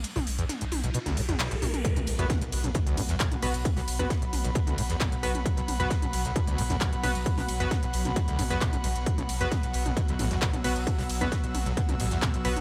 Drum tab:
RD |x-x-x-x-x-x-x-x-|x-x-xxx-x-x-x-x-|x-x-x-xxx-x-x-x-|x-x-xxx-x-x-x-x-|
HH |xooxxxoxxxoxxxox|xxoxxxoxxxoxxxox|xooxxxoxxxoxxxox|xxoxxxoxxxoxxxox|
CP |------------x---|------------x---|------------x---|------------x---|
SD |-o--o----o-oo---|----o------oo---|-o--o------oo---|----o------oo---|
T1 |--------------o-|----------------|----------------|----------------|
T2 |-o--o-o--o-o--oo|-o--o--o--o--o--|o--o--o--o--o--o|--o--o--o--o--o-|
BD |----------------|o---o---o---o---|o---o---o---o---|o---o---o---o---|

RD |x-x-x-xxx-x-x-x-|x-x-xxx-x-x-x-x-|x-x-x-xxx-x-x-x-|
HH |xooxxxoxxxoxxxox|xxoxxxoxxxoxxxox|xooxxxoxxxoxxxox|
CP |------------x---|------------x---|------------x---|
SD |-o--o------oo---|----o------oo---|-o--o------oo---|
T1 |----------------|----------------|----------------|
T2 |-o--o--o--o--o--|-o--o--o--o--o--|o--o--o--o--o--o|
BD |o---o---o---o---|o---o---o---o---|o---o---o---o---|